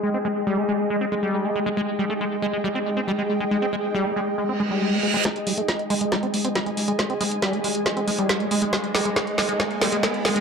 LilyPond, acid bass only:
\new Staff \with { instrumentName = "Acid bass" } { \clef bass \time 4/4 \tempo 4 = 138 aes16 c'16 aes16 r16 g16 a16 aes16 r16 aes16 c'16 aes16 g8 a16 aes16 aes16 | aes16 r16 g16 a16 aes16 r16 aes16 aes16 g16 c'16 r16 c'16 g16 aes16 r16 aes16 | aes16 c'16 aes16 r16 g16 a16 aes16 r16 aes16 c'16 aes16 g8 a16 aes16 aes16 | aes16 r16 g16 a16 aes16 r16 aes16 aes16 g16 c'16 r16 c'16 g16 aes16 r16 aes16 |
aes16 c'16 aes16 r16 g16 a16 aes16 r16 aes16 c'16 aes16 g8 a16 aes16 aes16 | aes16 r16 g16 aes16 aes16 r16 aes16 aes16 aes16 r16 g16 aes16 aes16 r16 aes16 aes16 | }